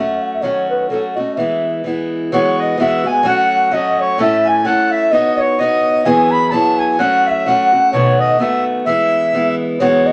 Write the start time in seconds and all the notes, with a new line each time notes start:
Already playing: F#3 C#4 E5
0.00 A3 F#4
0.23 F#5
0.34 E5
0.42 D#3 F#3 A3 C#4 F#4 C#5
0.70 B4
0.90 F#3 A3 C#4 F#4 A4
1.15 A3 F#4 D#5
1.20 C#4
1.36 E3 G#3 B3 E5
1.40 E4
1.84 E3 G#3 B3 E4
2.32 E3 G#3 B3 F#4 C#5
2.59 D#5
2.77 E3 G#3 B3 F#4 E5
3.04 G#3 B3 F#4 G#5
3.23 F#3 A3 C#4 F#4
3.27 F#5
3.71 F#3 A3 C#4 F#4 D#5
4.00 C#5
4.18 A2 A3 C#4 E4 A4 E5
4.45 G#5
4.65 A3 C#4 E4 A4 F#5
4.92 E5
5.11 B3 D#4 F#4 C#5 D#5
5.38 C#5
5.59 B3 D#4 F#4 C#5 D#5
6.05 E3 F#3 B3 E4 G#4 G#5
6.31 B5
6.51 F#3 B3 E4 A5
6.55 G#4
6.78 G#5
6.99 F#3 A3 C#4 F#4 F#5
7.26 E5
7.46 F#3 A3 C#4 F#4 F#5
7.72 A3 C#4 F#4
7.93 B2 D#3 A3 B3 F#4 C#5
8.20 D#5
8.39 D#3 A3 B3 F#4 E5
8.85 E3 G#3 B3 E4 E5
9.33 E3 G#3 B3 E4
9.80 E3 G#3 B3 F#4 C#5
10.06 D#5